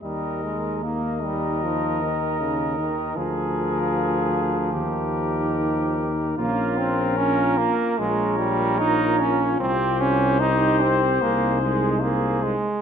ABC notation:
X:1
M:4/4
L:1/8
Q:1/4=74
K:Ebmix
V:1 name="Cornet"
e2 e6 | B4 B4 | B4 d4 | c6- c z |]
V:2 name="Flugelhorn"
B2 B6 | A4 G4 | F2 B2 B4 | G2 G2 A2 A z |]
V:3 name="Euphonium"
E2 E6 | F4 E4 | D2 F2 F4- | F2 E2 E3 z |]
V:4 name="Trombone"
G, A, B, G, F, E, D, E, | F,6- F, z | B, C D B, A, G, E D | C D E C B, A, B, A, |]
V:5 name="Tuba" clef=bass
E,,8 | =D,,4 E,,4 | B,,,4 B,,,4 | C,,4 C,,3 z |]